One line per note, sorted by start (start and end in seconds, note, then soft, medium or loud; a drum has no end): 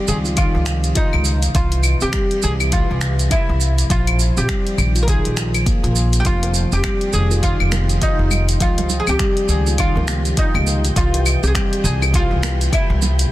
0.07 0.46 C#2 loud
0.07 0.24 D#3 medium
0.07 0.16 G#4 loud
0.07 shaker medium
0.25 0.36 F4 medium
0.25 shaker soft
0.37 0.47 D#3 loud
0.37 0.92 F4 medium
0.37 kick loud
0.37 closed hi-hat medium
0.37 claves medium
0.37 shaker soft
0.54 0.90 C#2 loud
0.54 0.66 F3 medium
0.66 0.83 C3 medium
0.66 finger snap medium
0.66 shaker medium
0.84 closed hi-hat soft
0.84 shaker soft
0.95 1.40 D#4 medium
0.95 1.12 F4 medium
0.95 kick loud
0.95 closed hi-hat medium
0.95 shaker soft
1.13 1.49 C#2 loud
1.13 claves medium
1.25 shaker medium
1.43 closed hi-hat soft
1.43 shaker soft
1.54 1.93 C2 loud
1.54 1.65 E3 medium
1.54 2.02 F4 loud
1.54 kick loud
1.54 closed hi-hat medium
1.54 shaker soft
1.72 closed hi-hat soft
1.83 claves medium
1.83 shaker medium
2.01 2.10 C2 medium
2.01 2.09 C4 medium
2.01 2.43 G4 medium
2.01 shaker soft
2.13 2.42 G3 medium
2.13 finger snap medium
2.13 kick loud
2.13 closed hi-hat medium
2.13 shaker soft
2.31 closed hi-hat soft
2.42 2.81 C2 loud
2.42 2.60 E3 medium
2.42 2.51 G#4 loud
2.42 shaker medium
2.60 2.72 E4 medium
2.60 claves medium
2.60 shaker soft
2.72 2.83 E3 loud
2.72 3.31 F4 loud
2.72 kick loud
2.72 closed hi-hat medium
2.72 shaker soft
2.90 3.26 C2 loud
2.90 3.01 E3 medium
3.01 3.18 C3 medium
3.01 finger snap medium
3.01 shaker medium
3.19 closed hi-hat soft
3.19 shaker soft
3.30 3.48 E4 medium
3.30 3.75 E4 medium
3.30 kick loud
3.30 closed hi-hat medium
3.30 claves medium
3.30 shaker soft
3.49 3.84 C2 loud
3.61 shaker medium
3.78 closed hi-hat soft
3.78 shaker soft
3.90 4.28 A#1 loud
3.90 4.00 F3 loud
3.90 4.37 F4 loud
3.90 kick loud
3.90 closed hi-hat medium
3.90 shaker soft
4.07 closed hi-hat soft
4.07 claves medium
4.20 shaker medium
4.37 4.46 A#1 medium
4.37 4.44 C4 medium
4.37 5.02 G4 medium
4.37 shaker soft
4.49 4.77 G3 medium
4.49 finger snap medium
4.49 kick loud
4.49 closed hi-hat medium
4.49 shaker soft
4.67 closed hi-hat soft
4.78 5.16 A#1 loud
4.78 4.95 D#3 medium
4.78 claves medium
4.78 shaker medium
4.95 5.07 F4 medium
4.95 closed hi-hat soft
4.95 shaker soft
5.03 5.08 A#4 medium
5.07 5.18 D#3 loud
5.07 5.93 G#4 medium
5.07 kick loud
5.07 closed hi-hat medium
5.07 shaker soft
5.24 5.60 A#1 medium
5.24 5.35 F3 medium
5.24 closed hi-hat soft
5.36 5.54 F3 medium
5.36 finger snap medium
5.36 shaker medium
5.54 closed hi-hat soft
5.54 claves medium
5.54 shaker soft
5.66 5.76 A#3 medium
5.66 kick loud
5.66 closed hi-hat medium
5.66 shaker soft
5.83 6.19 A#1 loud
5.83 5.95 F4 medium
5.83 closed hi-hat soft
5.96 shaker medium
6.13 closed hi-hat soft
6.13 shaker soft
6.20 6.26 G4 medium
6.25 6.63 F1 loud
6.25 6.35 F3 loud
6.25 6.73 F4 loud
6.25 13.32 G4 medium
6.25 13.32 G5 medium
6.25 kick loud
6.25 closed hi-hat medium
6.25 shaker soft
6.43 closed hi-hat soft
6.43 high bongo soft
6.54 shaker medium
6.72 6.81 F1 medium
6.72 6.79 C4 medium
6.72 7.11 G4 medium
6.72 shaker soft
6.84 7.12 G3 medium
6.84 finger snap medium
6.84 kick loud
6.84 closed hi-hat medium
6.84 claves medium
6.84 shaker soft
7.01 closed hi-hat soft
7.13 7.52 F1 loud
7.13 7.30 D#3 medium
7.13 7.43 G#4 loud
7.13 shaker medium
7.31 7.42 F4 medium
7.31 high bongo soft
7.31 shaker soft
7.43 7.53 D#3 loud
7.43 8.04 F4 loud
7.43 kick loud
7.43 closed hi-hat medium
7.43 shaker soft
7.60 7.96 F1 loud
7.60 7.72 F3 medium
7.60 claves medium
7.72 7.90 C3 medium
7.72 finger snap medium
7.72 high bongo medium
7.72 high conga medium
7.72 low conga medium
7.72 shaker medium
7.89 closed hi-hat soft
7.89 shaker soft
8.02 8.46 D#4 medium
8.02 8.19 F4 medium
8.02 kick loud
8.02 closed hi-hat medium
8.02 shaker soft
8.19 8.55 F1 loud
8.31 high conga medium
8.31 low conga medium
8.31 claves medium
8.31 shaker medium
8.49 closed hi-hat soft
8.49 shaker soft
8.60 8.99 C#2 medium
8.60 8.71 F3 loud
8.60 8.97 F4 loud
8.60 kick loud
8.60 closed hi-hat medium
8.60 shaker soft
8.78 closed hi-hat soft
8.78 high bongo soft
8.78 low conga medium
8.90 low conga medium
8.90 shaker medium
9.00 9.08 G#4 medium
9.07 9.16 C#2 medium
9.07 9.15 C4 medium
9.07 9.47 G4 medium
9.07 claves medium
9.07 shaker soft
9.19 9.48 G3 medium
9.19 finger snap medium
9.19 kick loud
9.19 closed hi-hat medium
9.19 shaker soft
9.37 closed hi-hat soft
9.48 9.87 C#2 loud
9.48 9.66 D#3 medium
9.48 9.79 G#4 loud
9.48 shaker medium
9.67 9.78 F4 medium
9.67 high bongo soft
9.67 high conga medium
9.67 shaker soft
9.78 9.89 D#3 loud
9.78 10.40 F4 loud
9.78 kick loud
9.78 closed hi-hat medium
9.78 claves medium
9.78 shaker soft
9.95 10.31 C#2 loud
9.95 10.08 F3 medium
9.95 high bongo medium
9.95 high conga medium
10.08 10.25 C3 medium
10.08 finger snap medium
10.08 high conga medium
10.08 shaker medium
10.25 closed hi-hat soft
10.25 shaker soft
10.37 10.82 D#4 medium
10.37 10.54 F4 medium
10.37 kick loud
10.37 closed hi-hat medium
10.37 shaker soft
10.54 10.90 C#2 loud
10.54 high conga medium
10.54 claves medium
10.67 high bongo soft
10.67 shaker medium
10.85 closed hi-hat soft
10.85 shaker soft
10.96 11.34 C2 loud
10.96 11.06 E3 loud
10.96 11.40 F4 loud
10.96 kick loud
10.96 closed hi-hat medium
10.96 shaker soft
11.14 closed hi-hat soft
11.14 high bongo soft
11.26 claves medium
11.26 shaker medium
11.43 11.51 C2 medium
11.43 11.50 C4 medium
11.43 11.47 G4 medium
11.43 shaker soft
11.47 11.54 G#4 medium
11.55 11.83 G3 medium
11.55 11.85 G4 loud
11.55 finger snap medium
11.55 kick loud
11.55 closed hi-hat medium
11.55 shaker soft
11.73 closed hi-hat soft
11.84 12.22 C2 loud
11.84 12.01 E3 medium
11.84 12.15 G#4 loud
11.84 shaker medium
12.02 12.13 E4 medium
12.02 high bongo soft
12.02 claves medium
12.02 shaker soft
12.13 12.24 E3 loud
12.13 12.73 F4 loud
12.13 kick loud
12.13 closed hi-hat medium
12.13 shaker soft
12.31 12.66 C2 loud
12.31 12.43 E3 medium
12.43 finger snap medium
12.43 high bongo medium
12.43 high conga medium
12.43 low conga medium
12.43 shaker medium
12.61 closed hi-hat soft
12.61 shaker soft
12.73 12.90 E4 medium
12.73 13.17 E4 medium
12.73 kick loud
12.73 closed hi-hat medium
12.73 claves medium
12.73 shaker soft
12.90 13.25 C2 loud
13.02 high conga medium
13.02 low conga medium
13.02 shaker medium
13.19 closed hi-hat medium
13.19 shaker soft